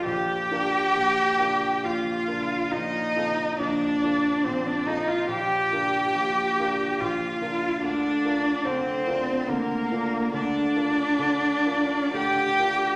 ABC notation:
X:1
M:3/4
L:1/16
Q:1/4=70
K:Bb
V:1 name="Violin"
g8 f4 | e4 d4 c d e f | g8 f4 | d4 c4 B4 |
d8 g4 |]
V:2 name="Cello"
G8 F4 | E4 D4 C D E F | G8 F4 | D4 C4 B,4 |
D8 G4 |]
V:3 name="Grand piano"
[B,,,B,,]2 [DFB]2 [B,,,B,,]2 [DFB]2 [B,,,B,,]2 [DFB]2 | [B,,,B,,]2 [CFA]2 [B,,,B,,]2 [CFA]2 [B,,,B,,]2 [CFA]2 | [B,,,B,,]2 [DFB]2 [B,,,B,,]2 [DFB]2 [B,,,B,,]2 [DFB]2 | [D,,D,]2 [DFB]2 [D,,D,]2 [DFB]2 [D,,D,]2 [DFB]2 |
[D,,D,]2 [DFB]2 [D,,D,]2 [DFB]2 [D,,D,]2 [DFB]2 |]